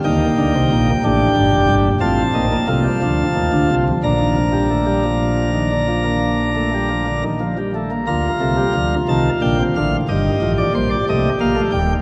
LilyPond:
<<
  \new Staff \with { instrumentName = "Pipe organ" } { \time 12/8 \key bes \major \tempo 4. = 60 << { g''2. a''2. | bes''1~ bes''4. r8 | bes''4. a''8 g''8 f''8 ees''8. d''16 c''16 d''16 ees''8 f''8 g''8 | } \\ { ees'4. g'4. f'8 ees'8 f'2 | d'1~ d'4. r8 | f'2. g'2. | } >> }
  \new Staff \with { instrumentName = "Pipe organ" } { \clef bass \time 12/8 \key bes \major << { bes4. d'4. c'8. bes16 a16 g16 f4. | d16 ees16 f16 g16 a16 g16 f8. ees16 d16 f16 bes8. a16 g16 f16 d16 ees16 f16 g16 a16 bes16 | bes8 a16 g16 f8 ees8 d16 c16 d8 ees8 f8 g8 a8 bes16 a16 g8 | } \\ { <ees, ees>8 <d, d>16 <c, c>16 <bes,, bes,>8 <a,, a,>8 <g,, g,>16 <f,, f,>16 <g,, g,>8 <a,, a,>8 <bes,, bes,>8 <c, c>8 <d, d>8 <ees, ees>16 <d, d>16 <c, c>8 | <bes,, bes,>1~ <bes,, bes,>4. r8 | <d, d>8 <c, c>8 <d, d>8 <c, c>8 <bes,, bes,>8 <a,, a,>8 <g,, g,>8 <a,, a,>8 <bes,, bes,>8 <c, c>8 <bes,, bes,>8 <ees,, ees,>8 | } >> }
>>